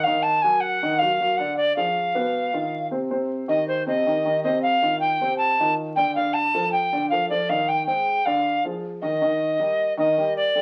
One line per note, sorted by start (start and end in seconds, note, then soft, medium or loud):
0.04 0.37 D#3 medium
0.04 0.37 D#4 medium
0.04 0.38 D#5 medium
0.04 0.24 F5 medium
0.23 0.44 A5 medium
0.42 0.75 F#3 medium
0.42 0.75 F#4 medium
0.42 0.75 A#4 medium
0.42 0.62 G#5 medium
0.60 1.00 F#5 loud
0.82 0.98 D#3 medium
0.82 0.98 D#4 medium
0.82 0.98 D#5 medium
0.99 1.17 F#3 medium
0.99 1.17 F#4 medium
0.99 1.17 A#4 medium
0.99 1.39 F5 loud
1.20 1.36 F#3 medium
1.20 1.36 F#4 medium
1.20 1.36 A#4 medium
1.37 1.70 D3 medium
1.37 1.71 D4 medium
1.37 1.71 D5 medium
1.37 1.57 F#5 medium
1.57 1.75 D5 medium
1.76 2.08 F3 medium
1.76 2.08 F4 medium
1.76 2.09 G#4 medium
1.76 2.87 F5 medium
2.15 2.46 B2 medium
2.15 2.46 B3 medium
2.15 2.47 B4 medium
2.53 2.85 D#3 medium
2.53 2.85 D#4 medium
2.53 2.85 F4 medium
2.91 3.07 C3 medium
2.91 3.07 C4 medium
2.91 3.07 C5 medium
3.10 3.42 C3 medium
3.10 3.42 C4 medium
3.10 3.42 C5 medium
3.48 3.80 D#3 medium
3.48 3.80 D#4 medium
3.48 3.80 G4 medium
3.48 3.67 D#5 medium
3.68 3.86 C5 medium
3.86 4.02 C3 medium
3.86 4.02 C4 medium
3.86 4.03 C5 medium
3.86 4.40 D#5 loud
4.07 4.22 D#3 medium
4.07 4.22 D#4 medium
4.07 4.22 G4 medium
4.25 4.41 D#3 medium
4.25 4.41 D#4 medium
4.25 4.41 G4 medium
4.44 4.75 C3 medium
4.44 4.76 C4 medium
4.44 4.76 C5 medium
4.44 4.62 D#5 medium
4.63 4.98 F5 loud
4.82 5.14 D#3 medium
4.82 5.14 D#4 medium
4.82 5.14 F4 medium
5.00 5.36 G5 loud
5.21 5.52 C3 medium
5.21 5.52 C4 medium
5.21 5.52 C5 medium
5.38 5.74 A5 loud
5.60 5.91 D#3 medium
5.60 5.91 D#4 medium
5.60 5.91 F4 medium
5.96 6.13 D3 medium
5.96 6.13 D4 medium
5.96 6.13 D5 medium
5.96 6.14 G5 medium
6.15 6.47 D3 medium
6.15 6.48 D4 medium
6.15 6.48 D5 medium
6.15 6.35 F5 loud
6.34 6.72 A5 loud
6.54 6.86 F3 medium
6.54 6.86 F4 medium
6.54 6.86 A4 medium
6.72 7.08 G5 medium
6.93 7.08 D3 medium
6.93 7.08 D4 medium
6.93 7.08 D5 medium
7.10 7.27 F3 medium
7.10 7.27 F4 medium
7.10 7.28 A4 medium
7.10 7.28 F5 medium
7.30 7.46 F3 medium
7.30 7.46 F4 medium
7.30 7.46 A4 medium
7.30 7.51 D5 medium
7.49 7.81 D#3 medium
7.49 7.81 D#4 medium
7.49 7.81 D#5 medium
7.49 7.70 F5 medium
7.68 7.86 G5 medium
7.87 8.19 G#3 medium
7.87 8.19 G#4 medium
7.87 8.19 C5 medium
7.87 8.27 G5 medium
8.26 8.57 D3 medium
8.26 8.57 D4 medium
8.26 8.57 D5 medium
8.26 8.64 F5 medium
8.65 8.96 F3 medium
8.65 8.96 F4 medium
8.65 8.96 G#4 medium
9.02 9.18 D#3 medium
9.02 9.18 D#4 medium
9.02 9.93 D#5 medium
9.02 9.18 D#5 medium
9.21 9.53 D#3 medium
9.21 9.53 D#4 medium
9.21 9.53 D#5 medium
9.59 9.90 G3 medium
9.59 9.91 G4 medium
9.59 9.91 A#4 medium
9.97 10.13 D#3 medium
9.97 10.13 D#4 medium
9.97 10.33 D#5 medium
9.97 10.14 D#5 medium
10.17 10.48 G3 medium
10.17 10.48 G4 medium
10.17 10.48 A#4 medium
10.37 10.62 D5 medium
10.55 10.62 G3 medium
10.55 10.62 G4 medium
10.55 10.62 A4 medium